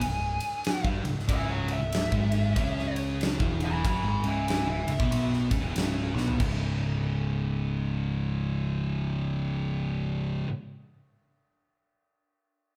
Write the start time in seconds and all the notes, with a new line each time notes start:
Already playing: G#5
0.01 C#1 C#2, ride
0.40 ride
0.65 snare, ride
0.84 G1 G2 G3, kick
1.03 C#1 C#2, ride
1.19 snare
1.28 C#1 C#2 C#3 E5 G#5, kick, ride
1.50 C#5 F#5
1.68 ride
1.72 E5
1.79 C#1 C#2
1.93 snare, ride
2.11 G#1 G#2 G#3, kick
2.32 ride
2.56 C#2 C#3 C#4, kick, ride
2.79 snare
2.96 ride
3.21 snare, ride
3.40 E1 E2 E3, kick
3.60 ride
3.65 G#5 B5
3.84 F#1 F#2 F#3 G#5 B5, kick, ride
4.03 G#1 G#2 G#3
4.08 G#5 B5
4.24 C#1 C#2 C#3 E5, ride
4.28 G#5
4.48 E5 G#5, snare, ride
4.67 C#1 C#2 E5
4.71 G#5
4.86 C#1 C#2, ride
4.92 E5
5.00 B1 B2 B3, kick
5.10 B1 B2 B3, ride
5.33 snare
5.51 C#1 C#2 C#3, kick, ride
5.62 E1 E2 E3
5.75 C#1 C#2 C#3, snare, ride
6.14 B1 B2 B3, snare
6.28 floor tom
6.39 C#1 C#2 G#2 C#3, kick, crash